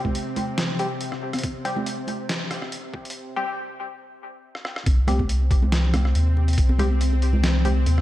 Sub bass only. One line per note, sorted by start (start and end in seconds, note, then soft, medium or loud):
1.43 2.28 C2 medium
2.29 2.92 D#2 loud
2.94 3.15 C2 medium
4.86 6.13 C2 medium
6.15 6.56 D#2 loud
6.58 7.85 C2 medium
7.86 8.01 D#2 loud